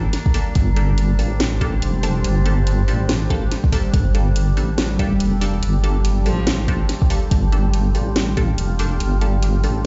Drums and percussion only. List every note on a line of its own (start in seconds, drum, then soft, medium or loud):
0.13 snare soft
0.13 closed hi-hat medium
0.26 kick loud
0.34 open hi-hat medium
0.55 kick loud
0.55 closed hi-hat medium
0.76 closed hi-hat medium
0.98 closed hi-hat medium
1.19 open hi-hat medium
1.40 snare loud
1.40 closed hi-hat medium
1.61 kick medium
1.61 closed hi-hat medium
1.82 closed hi-hat medium
2.03 open hi-hat loud
2.24 closed hi-hat medium
2.46 closed hi-hat medium
2.67 closed hi-hat medium
2.88 open hi-hat medium
3.09 snare loud
3.09 closed hi-hat medium
3.30 kick medium
3.30 closed hi-hat medium
3.52 snare soft
3.52 closed hi-hat medium
3.64 kick loud
3.72 kick medium
3.72 open hi-hat medium
3.94 kick loud
3.94 closed hi-hat medium
4.15 closed hi-hat medium
4.36 closed hi-hat medium
4.57 open hi-hat medium
4.78 snare loud
4.78 closed hi-hat medium
4.99 kick medium
4.99 closed hi-hat medium
5.20 closed hi-hat medium
5.41 open hi-hat loud
5.63 closed hi-hat medium
5.84 closed hi-hat medium
6.05 closed hi-hat medium
6.26 open hi-hat medium
6.47 snare loud
6.47 closed hi-hat medium
6.68 kick medium
6.68 closed hi-hat medium
6.89 snare soft
6.89 closed hi-hat medium
7.02 kick loud
7.10 open hi-hat medium
7.31 kick loud
7.31 closed hi-hat medium
7.52 closed hi-hat medium
7.74 closed hi-hat medium
7.95 open hi-hat medium
8.16 snare loud
8.16 closed hi-hat medium
8.37 kick medium
8.37 closed hi-hat medium
8.58 closed hi-hat medium
8.79 open hi-hat medium
9.00 closed hi-hat medium
9.21 closed hi-hat medium
9.43 closed hi-hat medium
9.64 open hi-hat medium